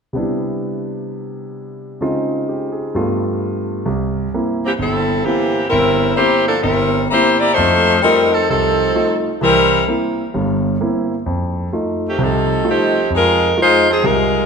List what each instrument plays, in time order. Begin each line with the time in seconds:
0.13 grand piano C3 G3 B3 D4
0.17 grand piano E4
2.01 grand piano C#3 G#3 C4 D#4 F4
2.49 grand piano G4
2.72 grand piano G#4
2.94 grand piano G2 G3 A3 B3 F4
3.86 grand piano C2
4.34 grand piano A#3 C4 E4
4.66 saxophone section E3 A#3 C4 G4
4.79 grand piano G1, saxophone section G3 C4 E4 A4
5.24 saxophone section E3 A#3 C4 G4, grand piano A#3 C4 E4
5.69 grand piano G1, saxophone section G3 C4 E4 A#4
6.15 saxophone section A#3 E4 G4 C5, grand piano A#3 C4 E4
6.47 saxophone section F3 A#3 D4 A4
6.62 grand piano G1, saxophone section G3 C4 E4 A#4
7.11 saxophone section A#3 E4 G4 C5, grand piano A#3 C4 E4
7.39 saxophone section A#3 E4 G4 D5
7.54 grand piano F2 A3, saxophone section A3 D#4 F4 C5
8.02 saxophone section G3 C4 D#4 A#4, grand piano A3 D#4 F4
8.33 saxophone section F3 C4 D#4 A4
8.50 grand piano C2, saxophone section F3 C4 D#4 A4
8.95 grand piano A3 D#4 F4
9.41 grand piano C2 E3, saxophone section G3 C4 E4 A#4
9.88 grand piano A#3 C4 E4
10.34 grand piano G1 G2
10.80 grand piano A#3 C4 E4
11.26 grand piano F2
11.73 grand piano A3 D#4 F4
12.08 saxophone section D#3 A3 C4 G4
12.18 grand piano C2 C3, saxophone section D#4 A4
12.22 saxophone section F3 C4
12.64 grand piano A3 D#4 F4
12.68 saxophone section F3 C4 D#4 G4
13.10 grand piano F2
13.15 saxophone section G#3 D#4 F4 A#4
13.57 grand piano G#3 D#4 F4
13.61 saxophone section G#3 D#4 F4 C5
13.90 saxophone section F3 C4 D#4 G#4
14.03 grand piano C2 C3, saxophone section G#3 D#4 F4 A#4